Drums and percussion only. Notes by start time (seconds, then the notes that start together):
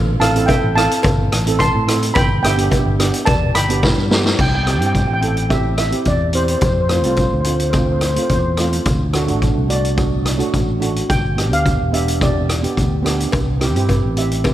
0.21 cross-stick, closed hi-hat
0.36 closed hi-hat
0.48 kick, closed hi-hat, cowbell
0.78 cross-stick, closed hi-hat
0.91 closed hi-hat
1.03 kick, closed hi-hat, cowbell
1.32 cross-stick, closed hi-hat
1.47 closed hi-hat
1.59 kick, closed hi-hat, cowbell
1.88 cross-stick, closed hi-hat
2.03 closed hi-hat
2.15 kick, closed hi-hat, cowbell
2.44 cross-stick, closed hi-hat
2.58 closed hi-hat
2.71 kick, closed hi-hat, cowbell
3.00 cross-stick, closed hi-hat
3.14 closed hi-hat
3.26 kick, closed hi-hat, cowbell
3.55 cross-stick, closed hi-hat
3.70 closed hi-hat
3.83 kick, snare, cowbell
4.11 snare
4.26 snare
4.39 kick, crash
4.67 cross-stick, closed hi-hat
4.82 closed hi-hat
4.95 kick, closed hi-hat
5.22 closed hi-hat
5.37 closed hi-hat
5.50 kick, cross-stick, closed hi-hat
5.78 cross-stick, closed hi-hat
5.92 closed hi-hat
6.05 kick, closed hi-hat
6.33 closed hi-hat
6.48 closed hi-hat
6.61 kick, closed hi-hat
6.89 cross-stick, closed hi-hat
7.04 closed hi-hat
7.16 kick, closed hi-hat
7.44 closed hi-hat
7.60 closed hi-hat
7.73 kick, cross-stick, closed hi-hat
8.01 cross-stick, closed hi-hat
8.16 closed hi-hat
8.29 kick, closed hi-hat
8.57 cross-stick, closed hi-hat
8.73 closed hi-hat
8.85 kick, closed hi-hat
9.13 cross-stick, closed hi-hat
9.28 closed hi-hat
9.42 kick, closed hi-hat
9.70 closed hi-hat
9.85 closed hi-hat
9.98 kick, cross-stick, closed hi-hat
10.26 cross-stick, closed hi-hat
10.40 closed hi-hat
10.54 kick, closed hi-hat
10.82 closed hi-hat
10.96 closed hi-hat
11.10 kick, closed hi-hat
11.38 cross-stick, closed hi-hat
11.53 closed hi-hat
11.66 kick, closed hi-hat
11.94 closed hi-hat
12.08 closed hi-hat
12.21 kick, cross-stick, closed hi-hat
12.49 cross-stick, closed hi-hat
12.64 closed hi-hat
12.77 kick, closed hi-hat
13.06 cross-stick, closed hi-hat
13.20 closed hi-hat
13.32 kick, closed hi-hat, cowbell
13.61 cross-stick, closed hi-hat
13.76 closed hi-hat
13.89 kick, closed hi-hat, cowbell
14.17 closed hi-hat
14.31 closed hi-hat
14.44 kick, cross-stick, closed hi-hat, cowbell